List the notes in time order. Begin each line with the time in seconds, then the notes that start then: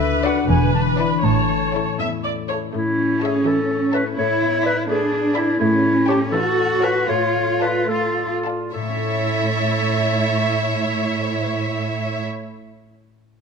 Already playing: D2 D3 B4 E5
0.00 D4
0.24 D4 F#4 B4 D5 F#5
0.48 E1 E2 E3 B4 G#5
0.73 D4 A5
0.98 D4 E4 B4 D5 B5
1.22 A1 A2 C#5 A5
1.49 A3
1.74 C#4 E4 A4 C#5
1.99 E2 E4 E5
2.24 A4 D5
2.48 E4 A4 C#5
2.73 A2 A3 C#4 E4
2.98 A3
3.22 E4 G#4 C#5 E5 A5
3.46 E3 A4
3.71 C#5
3.93 E4 B4 C#5 E5 A5
4.18 A2 A3 E4 C#5
4.42 B3
4.65 E4 B4 D5 E5 B5
4.89 A3 D4 G#4 B4
5.13 D5
5.36 E4 D5 E5 B5
5.60 A2 A3 C#4 E4
5.85 A3
6.08 G4 C#5 G5 A5
6.32 E3 F#4 A4
6.58 C#5
6.83 G4 B4 C#5 G5 A5
7.08 A2 A3 F4 C#5
7.35 A3
7.61 F4 B4 D5 F5 A5
7.88 A3 F4 A4
8.17 D5
8.45 F4 D5 F5 A5
8.73 A2 E4 A4 C#5 E5
8.82 A3
8.89 C#4
8.96 E4
9.03 C#5